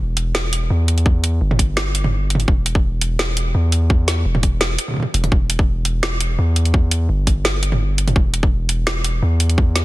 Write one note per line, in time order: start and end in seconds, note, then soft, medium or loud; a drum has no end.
0.00 0.69 E1 loud
0.17 closed hi-hat medium
0.35 snare loud
0.53 closed hi-hat medium
0.70 1.40 E2 medium
0.88 closed hi-hat medium
0.98 closed hi-hat soft
1.06 kick loud
1.24 closed hi-hat medium
1.41 2.46 G1 loud
1.51 mid tom medium
1.59 kick medium
1.59 closed hi-hat medium
1.77 snare loud
1.95 closed hi-hat medium
2.04 mid tom medium
2.30 closed hi-hat medium
2.35 mid tom medium
2.40 closed hi-hat soft
2.48 3.53 E1 loud
2.48 kick loud
2.66 closed hi-hat medium
2.75 kick loud
3.01 closed hi-hat medium
3.19 snare loud
3.37 closed hi-hat medium
3.55 4.24 E2 loud
3.72 closed hi-hat medium
3.90 kick loud
4.08 snare medium
4.08 closed hi-hat medium
4.25 4.77 E1 loud
4.35 mid tom medium
4.43 kick medium
4.43 closed hi-hat medium
4.61 snare loud
4.79 closed hi-hat medium
4.88 mid tom soft
4.91 mid tom soft
4.94 mid tom soft
4.97 mid tom soft
5.00 mid tom soft
5.03 mid tom soft
5.14 5.30 E1 loud
5.14 closed hi-hat medium
5.24 closed hi-hat soft
5.24 mid tom medium
5.32 6.37 E1 loud
5.32 kick loud
5.50 closed hi-hat medium
5.59 kick loud
5.85 closed hi-hat medium
6.03 snare loud
6.21 closed hi-hat medium
6.39 7.08 E2 loud
6.56 closed hi-hat medium
6.65 closed hi-hat soft
6.74 kick loud
6.91 closed hi-hat medium
7.09 8.14 G1 loud
7.27 kick medium
7.27 closed hi-hat medium
7.45 snare loud
7.63 closed hi-hat medium
7.72 mid tom medium
7.98 closed hi-hat medium
8.08 closed hi-hat soft
8.08 mid tom medium
8.16 9.21 E1 loud
8.16 kick loud
8.34 closed hi-hat medium
8.43 kick loud
8.69 closed hi-hat medium
8.87 snare loud
9.04 closed hi-hat medium
9.22 9.85 E2 medium
9.40 closed hi-hat medium
9.50 closed hi-hat soft
9.58 kick loud
9.76 snare medium
9.76 closed hi-hat medium